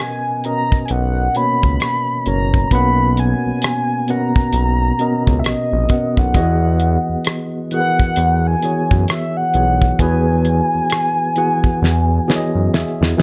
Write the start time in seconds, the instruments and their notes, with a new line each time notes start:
Already playing: tine electric piano B2 B3 C#4 A#4 D#5
0.00 soft synth lead G#5, cross-stick
0.44 tine electric piano B2 B3 C#4 A#4 D#5, soft synth lead A#5, closed hi-hat
0.72 kick
0.85 soft synth lead G#5, closed hi-hat
0.90 analog synth bass B1, soft synth lead F#5
1.35 tine electric piano B2 A#3 B3 C#4 C#5, soft synth lead B5, closed hi-hat
1.63 analog synth bass C#2, kick, closed hi-hat
1.80 cross-stick, closed hi-hat
2.26 analog synth bass F#1, tine electric piano B2 B3 C#4 A#4 C#5, soft synth lead A#5, closed hi-hat
2.54 kick
2.68 soft synth lead A#5, kick, closed hi-hat
2.72 analog synth bass B1, tine electric piano B2 A#3 B3 C#4 F#5, soft synth lead B5
3.17 soft synth lead G#5, closed hi-hat
3.46 analog synth bass B1
3.62 cross-stick, closed hi-hat
4.08 tine electric piano B2 B3 C#4 A#4 F#5, soft synth lead A#5, closed hi-hat
4.36 kick
4.53 analog synth bass B1, closed hi-hat
4.99 tine electric piano B2 B3 C#4 A#4 D#5, closed hi-hat
5.27 analog synth bass C#2, kick, closed hi-hat
5.39 soft synth lead E5
5.44 analog synth bass A#1, soft synth lead D#5, cross-stick, closed hi-hat
5.72 analog synth bass A#1
5.89 tine electric piano B2 B3 C#4 A#4 F#5, kick, closed hi-hat
6.17 analog synth bass B1, soft synth lead F#5, kick
6.34 analog synth bass E2, tine electric piano E3 B3 F#4 G#4 D#5, kick, closed hi-hat
6.80 closed hi-hat
7.09 analog synth bass E2
7.25 cross-stick, closed hi-hat
7.71 tine electric piano E3 B3 F#4 G#4 A#4, soft synth lead F#5, closed hi-hat
7.80 tine electric piano B4
8.00 kick
8.16 analog synth bass E2, closed hi-hat
8.47 soft synth lead G#5
8.62 tine electric piano E3 B3 F#4 G#4 C#5, closed hi-hat
8.91 analog synth bass F#2, kick, closed hi-hat
9.08 soft synth lead E5, cross-stick, closed hi-hat
9.37 soft synth lead F#5
9.54 analog synth bass B1, tine electric piano E3 B3 F#4 G#4 C#5, closed hi-hat
9.82 kick
9.99 analog synth bass E2, tine electric piano E3 B3 F#4 G#4 B4, soft synth lead G#5, kick, closed hi-hat
10.45 closed hi-hat
10.74 analog synth bass E2
10.90 cross-stick, closed hi-hat
11.36 tine electric piano E3 B3 F#4 G#4 F#5, closed hi-hat
11.64 kick
11.82 analog synth bass E2, snare
12.28 tine electric piano E3 B3 F#4 G#4 C#5, snare
12.36 tine electric piano D#5
12.55 analog synth bass F#2
12.73 analog synth bass E2, tine electric piano G#4 E5, snare
13.01 analog synth bass E2, snare
13.17 tine electric piano E3 B3 F#4 G#4 D#5, analog synth bass E3